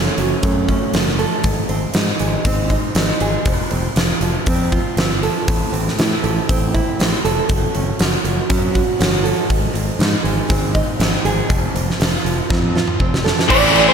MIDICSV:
0, 0, Header, 1, 6, 480
1, 0, Start_track
1, 0, Tempo, 502513
1, 1377, Time_signature, 4, 2, 24, 8
1, 13311, End_track
2, 0, Start_track
2, 0, Title_t, "Clean electric guitar"
2, 0, Program_c, 0, 27
2, 12902, Note_on_c, 0, 74, 106
2, 13261, Note_off_c, 0, 74, 0
2, 13265, Note_on_c, 0, 72, 98
2, 13311, Note_off_c, 0, 72, 0
2, 13311, End_track
3, 0, Start_track
3, 0, Title_t, "Steel-string acoustic guitar"
3, 0, Program_c, 1, 25
3, 0, Note_on_c, 1, 42, 60
3, 0, Note_on_c, 1, 57, 57
3, 0, Note_on_c, 1, 61, 67
3, 172, Note_on_c, 1, 54, 62
3, 397, Note_off_c, 1, 57, 0
3, 408, Note_on_c, 1, 57, 59
3, 644, Note_off_c, 1, 61, 0
3, 652, Note_off_c, 1, 42, 0
3, 656, Note_on_c, 1, 61, 57
3, 880, Note_off_c, 1, 57, 0
3, 892, Note_on_c, 1, 57, 69
3, 1134, Note_on_c, 1, 69, 70
3, 1376, Note_off_c, 1, 57, 0
3, 1376, Note_off_c, 1, 69, 0
3, 1377, Note_off_c, 1, 54, 0
3, 1378, Note_off_c, 1, 61, 0
3, 1378, Note_on_c, 1, 44, 58
3, 1616, Note_on_c, 1, 60, 57
3, 1851, Note_on_c, 1, 63, 66
3, 2098, Note_on_c, 1, 56, 63
3, 2343, Note_off_c, 1, 60, 0
3, 2347, Note_on_c, 1, 60, 70
3, 2575, Note_off_c, 1, 63, 0
3, 2582, Note_off_c, 1, 44, 0
3, 2587, Note_on_c, 1, 63, 61
3, 2821, Note_off_c, 1, 60, 0
3, 2825, Note_on_c, 1, 60, 61
3, 3068, Note_on_c, 1, 68, 69
3, 3303, Note_off_c, 1, 56, 0
3, 3307, Note_off_c, 1, 63, 0
3, 3307, Note_off_c, 1, 68, 0
3, 3312, Note_on_c, 1, 53, 58
3, 3546, Note_off_c, 1, 60, 0
3, 3549, Note_on_c, 1, 60, 57
3, 3790, Note_on_c, 1, 65, 60
3, 4019, Note_off_c, 1, 53, 0
3, 4030, Note_on_c, 1, 53, 60
3, 4267, Note_off_c, 1, 60, 0
3, 4278, Note_on_c, 1, 60, 62
3, 4501, Note_off_c, 1, 65, 0
3, 4513, Note_on_c, 1, 65, 58
3, 4752, Note_off_c, 1, 60, 0
3, 4763, Note_on_c, 1, 60, 64
3, 4995, Note_on_c, 1, 69, 65
3, 5231, Note_off_c, 1, 53, 0
3, 5231, Note_off_c, 1, 65, 0
3, 5236, Note_off_c, 1, 60, 0
3, 5244, Note_on_c, 1, 45, 58
3, 5471, Note_on_c, 1, 60, 61
3, 5719, Note_on_c, 1, 64, 60
3, 5954, Note_on_c, 1, 57, 57
3, 6187, Note_off_c, 1, 60, 0
3, 6198, Note_on_c, 1, 60, 62
3, 6427, Note_off_c, 1, 64, 0
3, 6438, Note_off_c, 1, 45, 0
3, 6438, Note_on_c, 1, 64, 61
3, 6668, Note_off_c, 1, 60, 0
3, 6679, Note_on_c, 1, 60, 64
3, 6917, Note_off_c, 1, 69, 0
3, 6921, Note_on_c, 1, 69, 66
3, 7153, Note_off_c, 1, 57, 0
3, 7155, Note_off_c, 1, 60, 0
3, 7155, Note_off_c, 1, 64, 0
3, 7156, Note_off_c, 1, 69, 0
3, 7159, Note_on_c, 1, 54, 62
3, 7398, Note_on_c, 1, 61, 61
3, 7635, Note_on_c, 1, 66, 67
3, 7863, Note_off_c, 1, 54, 0
3, 7874, Note_on_c, 1, 54, 63
3, 8109, Note_off_c, 1, 61, 0
3, 8120, Note_on_c, 1, 61, 66
3, 8339, Note_off_c, 1, 66, 0
3, 8350, Note_on_c, 1, 66, 61
3, 8575, Note_off_c, 1, 61, 0
3, 8586, Note_on_c, 1, 61, 66
3, 8824, Note_on_c, 1, 69, 76
3, 9067, Note_off_c, 1, 69, 0
3, 9068, Note_off_c, 1, 61, 0
3, 9068, Note_on_c, 1, 44, 65
3, 9070, Note_off_c, 1, 66, 0
3, 9072, Note_off_c, 1, 54, 0
3, 9299, Note_on_c, 1, 60, 55
3, 9543, Note_on_c, 1, 63, 65
3, 9775, Note_on_c, 1, 56, 59
3, 10011, Note_off_c, 1, 60, 0
3, 10015, Note_on_c, 1, 60, 66
3, 10252, Note_off_c, 1, 63, 0
3, 10263, Note_on_c, 1, 63, 60
3, 10266, Note_off_c, 1, 44, 0
3, 10498, Note_off_c, 1, 60, 0
3, 10501, Note_on_c, 1, 60, 64
3, 10747, Note_on_c, 1, 68, 69
3, 10974, Note_off_c, 1, 56, 0
3, 10977, Note_on_c, 1, 53, 60
3, 10983, Note_off_c, 1, 63, 0
3, 10985, Note_off_c, 1, 68, 0
3, 11222, Note_off_c, 1, 60, 0
3, 11226, Note_on_c, 1, 60, 55
3, 11458, Note_on_c, 1, 65, 64
3, 11682, Note_off_c, 1, 53, 0
3, 11694, Note_on_c, 1, 53, 59
3, 11922, Note_off_c, 1, 60, 0
3, 11933, Note_on_c, 1, 60, 58
3, 12170, Note_off_c, 1, 65, 0
3, 12182, Note_on_c, 1, 65, 58
3, 12402, Note_off_c, 1, 60, 0
3, 12413, Note_on_c, 1, 60, 62
3, 12648, Note_on_c, 1, 69, 68
3, 12889, Note_off_c, 1, 53, 0
3, 12890, Note_off_c, 1, 69, 0
3, 12891, Note_off_c, 1, 60, 0
3, 12895, Note_off_c, 1, 65, 0
3, 13311, End_track
4, 0, Start_track
4, 0, Title_t, "Distorted electric guitar"
4, 0, Program_c, 2, 30
4, 12879, Note_on_c, 2, 45, 99
4, 12885, Note_on_c, 2, 52, 91
4, 12894, Note_on_c, 2, 57, 98
4, 12894, Note_on_c, 2, 60, 106
4, 12902, Note_on_c, 2, 64, 108
4, 13103, Note_off_c, 2, 64, 0
4, 13115, Note_on_c, 2, 64, 63
4, 13121, Note_off_c, 2, 57, 0
4, 13121, Note_off_c, 2, 60, 0
4, 13125, Note_on_c, 2, 60, 70
4, 13133, Note_on_c, 2, 57, 56
4, 13311, Note_off_c, 2, 45, 0
4, 13311, Note_off_c, 2, 52, 0
4, 13311, Note_off_c, 2, 57, 0
4, 13311, Note_off_c, 2, 60, 0
4, 13311, Note_off_c, 2, 64, 0
4, 13311, End_track
5, 0, Start_track
5, 0, Title_t, "Fingered electric bass"
5, 0, Program_c, 3, 33
5, 173, Note_on_c, 3, 30, 73
5, 320, Note_off_c, 3, 30, 0
5, 412, Note_on_c, 3, 42, 73
5, 707, Note_off_c, 3, 42, 0
5, 893, Note_on_c, 3, 30, 74
5, 1188, Note_off_c, 3, 30, 0
5, 1380, Note_on_c, 3, 32, 90
5, 1527, Note_off_c, 3, 32, 0
5, 1615, Note_on_c, 3, 32, 68
5, 1763, Note_off_c, 3, 32, 0
5, 1862, Note_on_c, 3, 44, 78
5, 2008, Note_off_c, 3, 44, 0
5, 2105, Note_on_c, 3, 32, 80
5, 2251, Note_off_c, 3, 32, 0
5, 2340, Note_on_c, 3, 32, 82
5, 2634, Note_off_c, 3, 32, 0
5, 2818, Note_on_c, 3, 32, 73
5, 2967, Note_off_c, 3, 32, 0
5, 3065, Note_on_c, 3, 32, 82
5, 3211, Note_off_c, 3, 32, 0
5, 3302, Note_on_c, 3, 29, 76
5, 3449, Note_off_c, 3, 29, 0
5, 3547, Note_on_c, 3, 29, 70
5, 3693, Note_off_c, 3, 29, 0
5, 3784, Note_on_c, 3, 29, 78
5, 3931, Note_off_c, 3, 29, 0
5, 4018, Note_on_c, 3, 29, 76
5, 4168, Note_off_c, 3, 29, 0
5, 4271, Note_on_c, 3, 41, 73
5, 4564, Note_off_c, 3, 41, 0
5, 4745, Note_on_c, 3, 31, 71
5, 5039, Note_off_c, 3, 31, 0
5, 5236, Note_on_c, 3, 33, 80
5, 5381, Note_off_c, 3, 33, 0
5, 5468, Note_on_c, 3, 33, 68
5, 5615, Note_off_c, 3, 33, 0
5, 5716, Note_on_c, 3, 45, 78
5, 5861, Note_off_c, 3, 45, 0
5, 5959, Note_on_c, 3, 33, 82
5, 6103, Note_off_c, 3, 33, 0
5, 6202, Note_on_c, 3, 33, 72
5, 6492, Note_off_c, 3, 33, 0
5, 6683, Note_on_c, 3, 33, 75
5, 6826, Note_off_c, 3, 33, 0
5, 6922, Note_on_c, 3, 29, 80
5, 7065, Note_off_c, 3, 29, 0
5, 7158, Note_on_c, 3, 30, 82
5, 7302, Note_off_c, 3, 30, 0
5, 7407, Note_on_c, 3, 30, 76
5, 7548, Note_off_c, 3, 30, 0
5, 7641, Note_on_c, 3, 30, 78
5, 7784, Note_off_c, 3, 30, 0
5, 7875, Note_on_c, 3, 30, 74
5, 8020, Note_off_c, 3, 30, 0
5, 8116, Note_on_c, 3, 42, 70
5, 8407, Note_off_c, 3, 42, 0
5, 8602, Note_on_c, 3, 31, 85
5, 8891, Note_off_c, 3, 31, 0
5, 9072, Note_on_c, 3, 32, 79
5, 9218, Note_off_c, 3, 32, 0
5, 9304, Note_on_c, 3, 32, 79
5, 9452, Note_off_c, 3, 32, 0
5, 9544, Note_on_c, 3, 44, 86
5, 9692, Note_off_c, 3, 44, 0
5, 9784, Note_on_c, 3, 32, 78
5, 9931, Note_off_c, 3, 32, 0
5, 10033, Note_on_c, 3, 32, 81
5, 10324, Note_off_c, 3, 32, 0
5, 10503, Note_on_c, 3, 32, 74
5, 10650, Note_off_c, 3, 32, 0
5, 10745, Note_on_c, 3, 32, 81
5, 10891, Note_off_c, 3, 32, 0
5, 10984, Note_on_c, 3, 29, 79
5, 11130, Note_off_c, 3, 29, 0
5, 11219, Note_on_c, 3, 29, 76
5, 11366, Note_off_c, 3, 29, 0
5, 11463, Note_on_c, 3, 29, 77
5, 11609, Note_off_c, 3, 29, 0
5, 11698, Note_on_c, 3, 29, 68
5, 11845, Note_off_c, 3, 29, 0
5, 11945, Note_on_c, 3, 41, 75
5, 12235, Note_off_c, 3, 41, 0
5, 12418, Note_on_c, 3, 29, 74
5, 12708, Note_off_c, 3, 29, 0
5, 12895, Note_on_c, 3, 33, 100
5, 13257, Note_off_c, 3, 33, 0
5, 13311, End_track
6, 0, Start_track
6, 0, Title_t, "Drums"
6, 170, Note_on_c, 9, 46, 41
6, 265, Note_off_c, 9, 46, 0
6, 410, Note_on_c, 9, 46, 57
6, 414, Note_on_c, 9, 36, 106
6, 505, Note_off_c, 9, 46, 0
6, 509, Note_off_c, 9, 36, 0
6, 654, Note_on_c, 9, 46, 39
6, 655, Note_on_c, 9, 36, 61
6, 750, Note_off_c, 9, 36, 0
6, 750, Note_off_c, 9, 46, 0
6, 894, Note_on_c, 9, 46, 62
6, 905, Note_on_c, 9, 38, 104
6, 989, Note_off_c, 9, 46, 0
6, 1001, Note_off_c, 9, 38, 0
6, 1033, Note_on_c, 9, 38, 27
6, 1129, Note_off_c, 9, 38, 0
6, 1139, Note_on_c, 9, 46, 43
6, 1235, Note_off_c, 9, 46, 0
6, 1372, Note_on_c, 9, 46, 58
6, 1377, Note_on_c, 9, 36, 93
6, 1468, Note_off_c, 9, 46, 0
6, 1473, Note_off_c, 9, 36, 0
6, 1615, Note_on_c, 9, 46, 42
6, 1710, Note_off_c, 9, 46, 0
6, 1849, Note_on_c, 9, 46, 62
6, 1861, Note_on_c, 9, 38, 95
6, 1945, Note_off_c, 9, 46, 0
6, 1956, Note_off_c, 9, 38, 0
6, 2095, Note_on_c, 9, 46, 45
6, 2190, Note_off_c, 9, 46, 0
6, 2339, Note_on_c, 9, 46, 65
6, 2340, Note_on_c, 9, 36, 98
6, 2434, Note_off_c, 9, 46, 0
6, 2436, Note_off_c, 9, 36, 0
6, 2578, Note_on_c, 9, 46, 45
6, 2579, Note_on_c, 9, 36, 57
6, 2673, Note_off_c, 9, 46, 0
6, 2675, Note_off_c, 9, 36, 0
6, 2817, Note_on_c, 9, 46, 69
6, 2829, Note_on_c, 9, 38, 110
6, 2913, Note_off_c, 9, 46, 0
6, 2924, Note_off_c, 9, 38, 0
6, 3061, Note_on_c, 9, 46, 46
6, 3156, Note_off_c, 9, 46, 0
6, 3299, Note_on_c, 9, 46, 60
6, 3302, Note_on_c, 9, 36, 107
6, 3394, Note_off_c, 9, 46, 0
6, 3398, Note_off_c, 9, 36, 0
6, 3541, Note_on_c, 9, 46, 45
6, 3637, Note_off_c, 9, 46, 0
6, 3783, Note_on_c, 9, 46, 61
6, 3794, Note_on_c, 9, 38, 92
6, 3878, Note_off_c, 9, 46, 0
6, 3890, Note_off_c, 9, 38, 0
6, 4022, Note_on_c, 9, 46, 46
6, 4117, Note_off_c, 9, 46, 0
6, 4263, Note_on_c, 9, 46, 63
6, 4269, Note_on_c, 9, 36, 93
6, 4358, Note_off_c, 9, 46, 0
6, 4364, Note_off_c, 9, 36, 0
6, 4511, Note_on_c, 9, 36, 69
6, 4512, Note_on_c, 9, 46, 36
6, 4607, Note_off_c, 9, 36, 0
6, 4607, Note_off_c, 9, 46, 0
6, 4750, Note_on_c, 9, 46, 62
6, 4761, Note_on_c, 9, 38, 94
6, 4845, Note_off_c, 9, 46, 0
6, 4857, Note_off_c, 9, 38, 0
6, 4997, Note_on_c, 9, 46, 43
6, 5092, Note_off_c, 9, 46, 0
6, 5233, Note_on_c, 9, 46, 61
6, 5236, Note_on_c, 9, 36, 107
6, 5329, Note_off_c, 9, 46, 0
6, 5332, Note_off_c, 9, 36, 0
6, 5480, Note_on_c, 9, 46, 44
6, 5576, Note_off_c, 9, 46, 0
6, 5615, Note_on_c, 9, 38, 28
6, 5710, Note_off_c, 9, 38, 0
6, 5717, Note_on_c, 9, 46, 54
6, 5729, Note_on_c, 9, 38, 94
6, 5813, Note_off_c, 9, 46, 0
6, 5824, Note_off_c, 9, 38, 0
6, 5960, Note_on_c, 9, 46, 43
6, 6055, Note_off_c, 9, 46, 0
6, 6202, Note_on_c, 9, 36, 97
6, 6210, Note_on_c, 9, 46, 65
6, 6298, Note_off_c, 9, 36, 0
6, 6305, Note_off_c, 9, 46, 0
6, 6443, Note_on_c, 9, 36, 61
6, 6447, Note_on_c, 9, 46, 38
6, 6539, Note_off_c, 9, 36, 0
6, 6543, Note_off_c, 9, 46, 0
6, 6688, Note_on_c, 9, 46, 69
6, 6700, Note_on_c, 9, 38, 106
6, 6784, Note_off_c, 9, 46, 0
6, 6795, Note_off_c, 9, 38, 0
6, 6928, Note_on_c, 9, 46, 53
6, 7023, Note_off_c, 9, 46, 0
6, 7156, Note_on_c, 9, 46, 64
6, 7160, Note_on_c, 9, 36, 105
6, 7251, Note_off_c, 9, 46, 0
6, 7256, Note_off_c, 9, 36, 0
6, 7399, Note_on_c, 9, 46, 46
6, 7495, Note_off_c, 9, 46, 0
6, 7635, Note_on_c, 9, 46, 64
6, 7647, Note_on_c, 9, 38, 94
6, 7731, Note_off_c, 9, 46, 0
6, 7742, Note_off_c, 9, 38, 0
6, 7882, Note_on_c, 9, 46, 48
6, 7977, Note_off_c, 9, 46, 0
6, 8117, Note_on_c, 9, 46, 68
6, 8120, Note_on_c, 9, 36, 102
6, 8213, Note_off_c, 9, 46, 0
6, 8215, Note_off_c, 9, 36, 0
6, 8360, Note_on_c, 9, 46, 43
6, 8361, Note_on_c, 9, 36, 67
6, 8456, Note_off_c, 9, 36, 0
6, 8456, Note_off_c, 9, 46, 0
6, 8602, Note_on_c, 9, 46, 63
6, 8614, Note_on_c, 9, 38, 106
6, 8698, Note_off_c, 9, 46, 0
6, 8709, Note_off_c, 9, 38, 0
6, 8840, Note_on_c, 9, 46, 45
6, 8935, Note_off_c, 9, 46, 0
6, 9074, Note_on_c, 9, 46, 56
6, 9076, Note_on_c, 9, 36, 94
6, 9170, Note_off_c, 9, 46, 0
6, 9171, Note_off_c, 9, 36, 0
6, 9316, Note_on_c, 9, 46, 46
6, 9412, Note_off_c, 9, 46, 0
6, 9554, Note_on_c, 9, 46, 51
6, 9566, Note_on_c, 9, 38, 94
6, 9650, Note_off_c, 9, 46, 0
6, 9661, Note_off_c, 9, 38, 0
6, 9793, Note_on_c, 9, 46, 44
6, 9889, Note_off_c, 9, 46, 0
6, 10029, Note_on_c, 9, 36, 105
6, 10030, Note_on_c, 9, 46, 59
6, 10125, Note_off_c, 9, 36, 0
6, 10126, Note_off_c, 9, 46, 0
6, 10268, Note_on_c, 9, 36, 67
6, 10269, Note_on_c, 9, 46, 37
6, 10363, Note_off_c, 9, 36, 0
6, 10365, Note_off_c, 9, 46, 0
6, 10509, Note_on_c, 9, 46, 58
6, 10520, Note_on_c, 9, 38, 105
6, 10604, Note_off_c, 9, 46, 0
6, 10616, Note_off_c, 9, 38, 0
6, 10748, Note_on_c, 9, 46, 50
6, 10844, Note_off_c, 9, 46, 0
6, 10985, Note_on_c, 9, 36, 94
6, 10987, Note_on_c, 9, 46, 60
6, 11081, Note_off_c, 9, 36, 0
6, 11083, Note_off_c, 9, 46, 0
6, 11231, Note_on_c, 9, 46, 47
6, 11326, Note_off_c, 9, 46, 0
6, 11368, Note_on_c, 9, 38, 29
6, 11463, Note_off_c, 9, 38, 0
6, 11469, Note_on_c, 9, 46, 62
6, 11481, Note_on_c, 9, 38, 95
6, 11565, Note_off_c, 9, 46, 0
6, 11576, Note_off_c, 9, 38, 0
6, 11713, Note_on_c, 9, 46, 46
6, 11808, Note_off_c, 9, 46, 0
6, 11944, Note_on_c, 9, 36, 98
6, 11956, Note_on_c, 9, 38, 50
6, 12040, Note_off_c, 9, 36, 0
6, 12051, Note_off_c, 9, 38, 0
6, 12059, Note_on_c, 9, 48, 43
6, 12154, Note_off_c, 9, 48, 0
6, 12193, Note_on_c, 9, 38, 55
6, 12288, Note_off_c, 9, 38, 0
6, 12299, Note_on_c, 9, 47, 51
6, 12394, Note_off_c, 9, 47, 0
6, 12418, Note_on_c, 9, 36, 70
6, 12514, Note_off_c, 9, 36, 0
6, 12553, Note_on_c, 9, 38, 70
6, 12649, Note_off_c, 9, 38, 0
6, 12668, Note_on_c, 9, 38, 76
6, 12764, Note_off_c, 9, 38, 0
6, 12793, Note_on_c, 9, 38, 70
6, 12889, Note_off_c, 9, 38, 0
6, 12897, Note_on_c, 9, 49, 121
6, 12897, Note_on_c, 9, 57, 85
6, 12898, Note_on_c, 9, 36, 114
6, 12992, Note_off_c, 9, 49, 0
6, 12992, Note_off_c, 9, 57, 0
6, 12994, Note_off_c, 9, 36, 0
6, 13138, Note_on_c, 9, 57, 66
6, 13234, Note_off_c, 9, 57, 0
6, 13311, End_track
0, 0, End_of_file